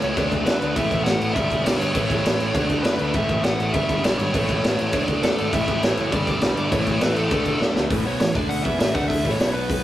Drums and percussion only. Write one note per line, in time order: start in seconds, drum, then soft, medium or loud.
0.02 crash medium
0.17 kick loud
0.17 crash medium
0.32 kick medium
0.32 crash medium
0.46 snare loud
0.46 crash medium
0.62 crash medium
0.76 kick loud
0.76 crash medium
0.91 kick medium
0.91 crash medium
1.06 snare loud
1.06 crash medium
1.21 crash medium
1.36 kick loud
1.36 crash medium
1.51 kick medium
1.51 crash medium
1.66 snare loud
1.66 crash loud
1.81 crash medium
1.95 kick loud
1.95 crash medium
2.10 kick medium
2.10 crash medium
2.26 snare loud
2.26 crash medium
2.40 crash medium
2.55 kick loud
2.55 crash medium
2.70 kick medium
2.70 crash medium
2.84 snare loud
2.84 crash medium
2.99 crash medium
3.14 kick loud
3.14 crash medium
3.29 kick medium
3.29 crash medium
3.44 snare loud
3.44 crash medium
3.60 crash medium
3.74 kick loud
3.74 crash medium
3.89 kick medium
3.89 crash medium
4.04 snare loud
4.04 crash medium
4.19 crash medium
4.34 kick loud
4.34 crash loud
4.49 kick medium
4.49 crash medium
4.64 snare loud
4.64 crash medium
4.79 crash medium
4.93 kick loud
4.93 crash medium
5.08 kick medium
5.08 crash medium
5.23 snare loud
5.23 crash medium
5.38 crash medium
5.53 kick loud
5.53 crash medium
5.68 kick medium
5.68 crash medium
5.83 snare loud
5.83 crash medium
5.97 crash medium
6.12 kick loud
6.12 crash medium
6.27 kick medium
6.27 crash medium
6.41 snare loud
6.41 crash medium
6.57 crash medium
6.72 kick loud
6.72 crash loud
6.87 kick medium
6.87 crash medium
7.01 snare loud
7.01 crash medium
7.16 crash medium
7.31 kick loud
7.31 crash medium
7.45 kick medium
7.45 crash medium
7.61 snare medium
7.76 snare loud
7.90 kick loud
7.90 open hi-hat medium
8.20 snare medium
8.20 open hi-hat medium
8.35 kick loud
8.50 open hi-hat medium
8.65 kick medium
8.80 snare loud
8.80 open hi-hat medium
8.95 kick loud
9.10 kick medium
9.10 open hi-hat medium
9.25 kick medium
9.40 snare loud
9.40 open hi-hat medium
9.70 kick loud
9.70 open hi-hat medium